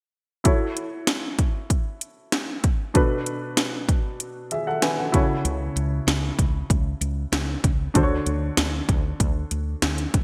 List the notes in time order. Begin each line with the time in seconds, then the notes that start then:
0.44 E4 F#4 A4 C#5, kick, closed hi-hat
0.77 closed hi-hat
1.07 snare, closed hi-hat
1.39 kick, closed hi-hat
1.70 kick, closed hi-hat
2.01 closed hi-hat
2.32 snare, closed hi-hat
2.64 kick, closed hi-hat
2.94 B2 D4 F#4 A4 B4, kick, closed hi-hat
3.26 closed hi-hat
3.57 snare, closed hi-hat
3.89 kick, closed hi-hat
4.20 closed hi-hat
4.51 G#4 E5, closed hi-hat
4.67 A4 F#5
4.82 B4 G#5, snare, closed hi-hat
4.98 A4 F#5
5.12 C#3 E4 F#4 A4 C#5, kick, closed hi-hat
5.45 C#2, closed hi-hat
5.76 C#2, closed hi-hat
6.07 C#2, snare, closed hi-hat
6.38 C#2, kick, closed hi-hat
6.70 C#2, kick, closed hi-hat
7.01 C#2, closed hi-hat
7.32 C#2, snare, closed hi-hat
7.64 C#2, kick, closed hi-hat
7.94 D2 D3 D4 F#4 A4 C5, kick, closed hi-hat
8.03 C#5
8.26 D2, closed hi-hat
8.57 D2, snare, closed hi-hat
8.89 D2, kick, closed hi-hat
9.20 D2, kick, closed hi-hat
9.51 D2, closed hi-hat
9.82 D2, snare, closed hi-hat
9.98 closed hi-hat
10.14 D2, kick, closed hi-hat